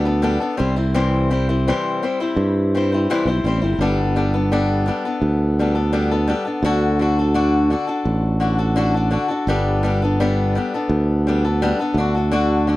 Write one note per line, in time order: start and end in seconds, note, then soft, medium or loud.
0.00 0.37 D2 medium
0.05 0.22 B3 medium
0.05 0.22 D4 soft
0.05 0.23 A4 medium
0.22 0.41 G3 medium
0.22 0.40 B3 medium
0.22 0.42 D4 medium
0.22 0.39 A4 medium
0.40 0.58 B3 medium
0.40 0.57 D4 soft
0.40 0.59 A4 medium
0.57 1.71 C2 medium
0.57 0.77 G3 medium
0.57 0.76 C4 medium
0.57 0.76 E4 medium
0.57 0.75 C5 medium
0.76 0.94 G3 soft
0.76 0.94 C4 soft
0.76 0.94 E4 soft
0.76 0.95 C5 medium
0.94 1.31 C3 medium
0.94 1.31 E3 medium
0.94 1.29 G3 medium
0.94 1.30 C4 medium
0.94 1.30 E4 medium
0.94 1.32 C5 medium
1.30 1.49 G3 medium
1.30 1.49 C4 medium
1.30 1.48 E4 medium
1.30 1.48 C5 medium
1.49 1.67 G3 soft
1.49 1.67 C4 soft
1.49 1.67 E4 soft
1.49 1.67 C5 medium
1.68 2.03 C3 medium
1.68 2.03 E3 medium
1.68 2.01 G3 medium
1.68 2.02 C4 medium
1.68 2.03 E4 medium
1.68 2.03 C5 medium
2.03 2.20 G3 medium
2.03 2.21 C4 medium
2.03 2.19 E4 medium
2.03 2.19 C5 medium
2.20 2.73 G3 soft
2.20 2.74 C4 soft
2.20 2.74 E4 medium
2.20 2.74 C5 medium
2.36 3.06 G2 medium
2.75 2.92 G3 medium
2.75 2.92 C4 medium
2.75 2.93 E4 medium
2.75 2.91 C5 medium
2.92 3.09 G3 soft
2.92 3.10 C4 soft
2.92 3.10 E4 soft
2.92 3.10 C5 medium
3.10 3.27 C3 medium
3.10 3.28 E3 medium
3.10 3.28 G3 medium
3.10 3.28 C4 medium
3.10 3.27 E4 medium
3.10 3.26 C5 medium
3.25 3.42 B1 medium
3.25 3.44 G3 soft
3.25 3.45 E4 medium
3.25 3.45 C5 medium
3.29 3.45 C4 soft
3.44 3.60 A1 medium
3.44 3.62 G3 medium
3.44 3.62 C4 medium
3.44 3.61 E4 medium
3.44 3.60 C5 medium
3.61 3.78 G1 medium
3.61 3.80 G3 soft
3.61 3.80 C4 soft
3.61 3.80 E4 soft
3.61 3.80 C5 soft
3.79 4.90 G1 medium
3.79 4.15 G3 medium
3.79 4.16 B3 medium
3.79 4.16 D4 medium
3.79 4.17 A4 medium
4.16 4.34 G3 medium
4.16 4.33 B3 medium
4.16 4.34 D4 medium
4.16 4.32 A4 medium
4.34 4.52 B3 soft
4.34 4.51 D4 soft
4.34 4.51 A4 medium
4.52 4.85 G3 medium
4.52 4.87 B3 medium
4.52 4.86 D4 medium
4.52 4.88 A4 medium
4.86 5.04 G3 medium
4.86 5.05 B3 medium
4.86 5.05 D4 medium
4.86 5.04 A4 medium
5.05 5.59 B3 medium
5.05 5.59 D4 soft
5.05 5.58 A4 medium
5.22 6.32 D2 medium
5.59 5.76 G3 medium
5.59 5.75 B3 medium
5.59 5.76 D4 medium
5.59 5.74 A4 medium
5.75 5.92 B3 soft
5.75 5.92 D4 soft
5.75 5.93 A4 medium
5.93 6.11 G3 medium
5.93 6.11 B3 medium
5.93 6.11 D4 medium
5.93 6.10 A4 medium
6.11 6.28 B3 medium
6.11 6.28 D4 soft
6.11 6.29 A4 medium
6.28 6.46 G3 medium
6.28 6.45 B3 medium
6.28 6.47 D4 medium
6.28 6.44 A4 medium
6.45 6.64 B3 soft
6.45 6.63 D4 soft
6.45 6.63 A4 medium
6.63 7.73 D2 medium
6.63 6.98 D3 medium
6.63 7.00 D4 medium
6.63 7.00 F#4 medium
6.63 7.01 A4 medium
6.99 7.17 D3 medium
6.99 7.18 D4 medium
6.99 7.18 F#4 medium
6.99 7.17 A4 medium
7.19 7.34 D4 soft
7.19 7.34 F#4 soft
7.19 7.35 A4 medium
7.34 7.69 D3 medium
7.34 7.70 D4 medium
7.34 7.70 F#4 medium
7.34 7.71 A4 medium
7.70 7.88 D3 medium
7.70 7.88 D4 medium
7.70 7.87 F#4 medium
7.70 7.86 A4 medium
7.87 8.40 D4 soft
7.87 8.40 F#4 medium
7.87 8.41 A4 medium
8.05 9.16 A1 medium
8.40 8.59 D3 medium
8.40 8.59 D4 medium
8.40 8.58 F#4 medium
8.40 8.57 A4 medium
8.58 8.76 D4 soft
8.58 8.76 F#4 medium
8.58 8.77 A4 medium
8.76 8.94 D3 medium
8.76 8.95 D4 medium
8.76 8.94 F#4 medium
8.76 8.93 A4 loud
8.94 9.10 D4 medium
8.94 9.11 F#4 soft
8.94 9.12 A4 medium
9.11 9.29 D3 medium
9.11 9.30 D4 medium
9.11 9.29 F#4 medium
9.11 9.27 A4 medium
9.28 9.48 D4 soft
9.28 9.48 F#4 medium
9.28 9.47 A4 medium
9.47 10.57 G1 medium
9.47 9.82 G3 medium
9.47 9.83 B3 medium
9.47 9.83 D4 medium
9.47 9.84 A4 medium
9.83 10.01 G3 medium
9.83 10.02 B3 medium
9.83 10.01 D4 medium
9.83 10.01 A4 medium
10.02 10.20 B3 medium
10.02 10.19 D4 soft
10.02 10.19 A4 medium
10.20 10.54 G3 medium
10.20 10.55 B3 medium
10.20 10.55 D4 medium
10.20 10.56 A4 medium
10.55 10.72 G3 medium
10.55 10.73 B3 medium
10.55 10.73 D4 medium
10.55 10.73 A4 medium
10.74 11.26 B3 medium
10.74 11.27 D4 medium
10.74 11.26 A4 medium
10.89 11.72 D2 medium
11.27 11.44 G3 medium
11.27 11.45 B3 medium
11.27 11.44 D4 medium
11.27 11.43 A4 medium
11.45 11.62 B3 soft
11.45 11.61 D4 soft
11.45 11.61 A4 medium
11.62 11.79 G3 medium
11.62 11.79 B3 medium
11.62 11.79 D4 medium
11.62 11.78 A4 medium
11.79 11.97 B3 medium
11.79 11.97 D4 medium
11.79 11.96 A4 medium
11.94 12.77 D2 medium
11.94 12.14 D3 medium
11.94 12.15 D4 medium
12.00 12.15 F#4 medium
12.00 12.14 A4 medium
12.15 12.31 D4 soft
12.15 12.32 F#4 soft
12.15 12.32 A4 soft
12.31 12.66 D3 medium
12.31 12.67 D4 medium
12.31 12.67 F#4 medium
12.31 12.67 A4 medium
12.67 12.77 D3 medium
12.67 12.77 D4 medium
12.67 12.77 F#4 medium
12.67 12.77 A4 medium